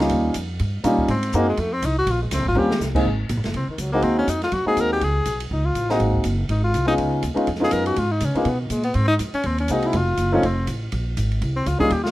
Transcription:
0.00 grand piano G3 A#3 C#4 D#4 F4, snare
0.09 upright bass D#2, kick, ride
0.34 upright bass F2, kick, hi-hat pedal, ride
0.59 upright bass G2, kick, ride
0.84 upright bass A#2, grand piano G3 A#3 C#4 D#4 F4, kick, hi-hat pedal, ride
0.99 kick
1.08 upright bass G#2, tenor saxophone C4, ride
1.23 ride
1.32 upright bass F#2, grand piano G#3 A#3 C4 D#4 F#4, tenor saxophone A#3, kick, hi-hat pedal
1.49 tenor saxophone G#3
1.57 upright bass F2, tenor saxophone A3, kick, ride
1.73 tenor saxophone C4
1.82 upright bass C2, tenor saxophone D#4, kick, hi-hat pedal, ride
1.98 tenor saxophone F#4
2.07 upright bass A#1, kick, ride
2.11 tenor saxophone F4
2.22 tenor saxophone G#3
2.31 upright bass C#2, tenor saxophone C4, kick, snare, hi-hat pedal, ride
2.39 upright bass A#1
2.46 upright bass G#1, tenor saxophone F4, kick
2.55 upright bass D#2, grand piano G3 A#3 C4 C#4 F4, tenor saxophone G4
2.71 snare
2.80 upright bass C2, snare, hi-hat pedal
2.95 grand piano G#3 A#3 C4 D#4 G#4, kick, crash
3.05 upright bass G#1, kick
3.29 upright bass A#1, kick, hi-hat pedal, ride
3.37 upright bass G#1
3.44 upright bass F#1, snare, ride
3.54 upright bass C2, tenor saxophone C4, kick, ride
3.68 tenor saxophone D#3, muted upright bass stroke
3.78 upright bass C#2, tenor saxophone F#3, kick, hi-hat pedal, ride
3.92 grand piano G#3 A#3 C4 D#4 F#4, tenor saxophone A#3
4.02 upright bass D#2, tenor saxophone C4, kick, ride
4.18 tenor saxophone C#4
4.27 upright bass F2, tenor saxophone D#4, kick, hi-hat pedal, ride
4.42 tenor saxophone F4, snare, ride
4.52 upright bass F#2, tenor saxophone F#4, kick, ride
4.66 grand piano G#3 A#3 C4 D#4 F#4, tenor saxophone G#4, muted upright bass stroke
4.77 upright bass D#2, tenor saxophone A#4, kick, hi-hat pedal, ride
4.93 tenor saxophone G4
5.01 upright bass C#2, tenor saxophone G#4, kick, ride
5.25 upright bass B1, kick, hi-hat pedal, ride
5.40 ride
5.51 upright bass C#2, tenor saxophone D#4, kick
5.65 tenor saxophone F4
5.75 upright bass A1, kick, hi-hat pedal, ride
5.89 grand piano G#3 A#3 C4 D#4 F#4, tenor saxophone D#4, snare
6.00 upright bass G#1, kick, ride
6.14 kick
6.24 upright bass F#1, hi-hat pedal, ride
6.49 upright bass G#1, tenor saxophone D#4, kick, ride
6.64 tenor saxophone F4
6.74 upright bass C2, kick, hi-hat pedal, ride
6.86 grand piano G#3 B3 C#4 D#4 F4, tenor saxophone D#4, ride
6.98 upright bass C#2, kick, ride
7.23 upright bass D#2, kick, hi-hat pedal, ride
7.34 grand piano G#3 B3 C#4 D#4 F4, muted upright bass stroke, ride
7.47 upright bass F2, kick, ride
7.55 snare
7.60 grand piano G#3 B3 C#4 D#4 F4, tenor saxophone G#4, snare
7.71 upright bass F#2, tenor saxophone A#4, kick, hi-hat pedal, ride
7.86 tenor saxophone F#4, ride
7.96 upright bass G#2, tenor saxophone F4, kick, ride
8.11 tenor saxophone D#4
8.20 upright bass C#3, kick, hi-hat pedal, ride
8.25 tenor saxophone C#4
8.34 grand piano G#3 B3 C#4 D#4 F4, tenor saxophone A#3, muted upright bass stroke, ride
8.45 upright bass B2, tenor saxophone B3, kick, ride
8.60 tenor saxophone D#3
8.70 upright bass A#2, tenor saxophone G#3, kick, hi-hat pedal, ride
8.83 tenor saxophone B3, ride
8.94 upright bass G#2, tenor saxophone C4, kick, ride
9.08 tenor saxophone D#4
9.19 upright bass F#2, kick, hi-hat pedal, ride
9.33 tenor saxophone C#4, muted upright bass stroke, ride
9.43 upright bass D#2, tenor saxophone C4, kick, ride
9.58 tenor saxophone C#4, ride
9.68 upright bass C2, grand piano G#3 A#3 C4 D#4 F#4, tenor saxophone D#4, kick, hi-hat pedal, ride
9.82 tenor saxophone E4, ride
9.93 upright bass F1, kick, ride
9.97 tenor saxophone F4
10.17 upright bass F#1, kick, hi-hat pedal, ride
10.32 grand piano F3 A3 C4 D#4 F4, tenor saxophone C#4
10.43 upright bass F1, tenor saxophone C4, kick, ride
10.67 upright bass A1, kick, hi-hat pedal, ride
10.92 upright bass A#1, kick, ride
11.17 upright bass G#1, kick, hi-hat pedal, ride
11.32 ride
11.41 upright bass C2, kick, ride
11.56 tenor saxophone C4
11.66 upright bass C#2, tenor saxophone F4, kick, hi-hat pedal, ride
11.79 grand piano G3 A#3 C#4 D#4 F4, tenor saxophone G#4, muted upright bass stroke, kick
11.90 upright bass D#2, tenor saxophone G4, kick, ride
12.03 tenor saxophone F4, snare

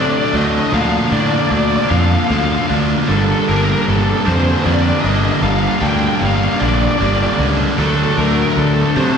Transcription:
Already playing: picked electric bass C3, distorted electric guitar D3 F#3 A3 D4
0.02 lead electric guitar D5
0.10 lead electric guitar D5
0.18 lead electric guitar D5
0.24 lead electric guitar D5
0.33 picked electric bass D2, distorted electric guitar F#3 A3 D4, lead electric guitar D#5
0.44 lead electric guitar D#5
0.51 lead electric guitar D#5
0.60 lead electric guitar D#5
0.67 lead electric guitar D#5
0.72 picked electric bass D2, distorted electric guitar D3 F3 A#3 D4, lead electric guitar F5
0.82 lead electric guitar F5
0.89 lead electric guitar F5
0.98 lead electric guitar F5
1.05 lead electric guitar F5
1.11 picked electric bass A2, distorted electric guitar F3 A#3 D4, lead electric guitar D5
1.20 lead electric guitar D5
1.27 lead electric guitar D5
1.36 lead electric guitar D5
1.42 lead electric guitar D5
1.51 picked electric bass D2, lead electric guitar D5
1.59 lead electric guitar D5
1.67 lead electric guitar D5
1.76 lead electric guitar D5
1.83 lead electric guitar D5
1.89 picked electric bass F2, distorted electric guitar D3 F3 A#3 D4, lead electric guitar F5
1.98 lead electric guitar F5
2.06 lead electric guitar F5
2.14 lead electric guitar F5
2.20 lead electric guitar F5
2.28 picked electric bass D2, distorted electric guitar D3 F3 A#3 D4, lead electric guitar F5
2.37 lead electric guitar F5
2.45 lead electric guitar F5
2.52 lead electric guitar F5
2.59 lead electric guitar F5
2.67 picked electric bass D2, distorted electric guitar A#3 D4, lead electric guitar F5
2.72 distorted electric guitar F3
3.08 picked electric bass G1, distorted electric guitar G2 D3 G3 A#3 D4, lead electric guitar A4
3.16 lead electric guitar A4
3.24 lead electric guitar A4
3.32 lead electric guitar A4
3.41 lead electric guitar A4
3.48 picked electric bass G1, distorted electric guitar G3 A#3 D4, lead electric guitar A#4
3.56 lead electric guitar A#4
3.64 lead electric guitar A#4
3.72 lead electric guitar A#4
3.82 lead electric guitar A#4
3.88 picked electric bass G1, lead electric guitar A4
3.96 lead electric guitar A4
4.03 lead electric guitar A4
4.09 lead electric guitar A4
4.18 lead electric guitar A4
4.25 picked electric bass F2, distorted electric guitar G2 D3 G3 A#3 D4, lead electric guitar C5
4.36 lead electric guitar C5
4.43 lead electric guitar C5
4.50 lead electric guitar C5
4.59 lead electric guitar C5
4.64 picked electric bass F2, distorted electric guitar D3 G3 A#3 D4, lead electric guitar D5
4.73 lead electric guitar D5
4.82 lead electric guitar D5
4.89 lead electric guitar D5
4.97 lead electric guitar D5
5.01 picked electric bass G1, distorted electric guitar G3 A#3 D4, lead electric guitar D#5
5.09 lead electric guitar D#5
5.17 lead electric guitar D#5
5.25 lead electric guitar D#5
5.31 lead electric guitar D#5
5.41 picked electric bass G1, distorted electric guitar G2 D3 G3 A#3 D4, lead electric guitar F5
5.51 lead electric guitar F5
5.59 lead electric guitar F5
5.67 lead electric guitar F5
5.76 distorted electric guitar D4, lead electric guitar F5
5.81 picked electric bass D2, distorted electric guitar G3 A#3, lead electric guitar G5
5.90 lead electric guitar G5
5.97 lead electric guitar G5
6.06 lead electric guitar G5
6.15 lead electric guitar G5
6.19 picked electric bass G1, lead electric guitar F5
6.26 lead electric guitar F5
6.36 lead electric guitar F5
6.44 lead electric guitar F5
6.53 lead electric guitar F5
6.60 picked electric bass A#1, distorted electric guitar G2 D3 G3 A#3 D4, lead electric guitar D5
6.68 lead electric guitar D5
6.75 lead electric guitar D5
6.83 lead electric guitar D5
6.91 lead electric guitar D5
6.99 picked electric bass G1, distorted electric guitar D3 G3 A#3 D4, lead electric guitar D5
7.05 lead electric guitar D5
7.14 lead electric guitar D5
7.23 lead electric guitar D5
7.30 lead electric guitar D5
7.36 picked electric bass C#2, distorted electric guitar A#3 D4, lead electric guitar D5
7.42 distorted electric guitar G3
7.78 picked electric bass D2, distorted electric guitar D3 F#3 A3 D4, lead electric guitar A4
7.86 lead electric guitar A4
7.95 lead electric guitar A4
8.03 lead electric guitar A4
8.12 lead electric guitar A4
8.17 picked electric bass D2, distorted electric guitar F#3 A3 D4, lead electric guitar A#4
8.26 lead electric guitar A#4
8.33 lead electric guitar A#4
8.42 lead electric guitar A#4
8.51 lead electric guitar A#4
8.57 picked electric bass D2, lead electric guitar A4
8.66 lead electric guitar A4
8.74 lead electric guitar A4
8.82 lead electric guitar A4
8.91 lead electric guitar A4
8.96 picked electric bass C3, distorted electric guitar D3 F#3 A3 D4, lead electric guitar C5
9.04 lead electric guitar C5
9.13 lead electric guitar C5

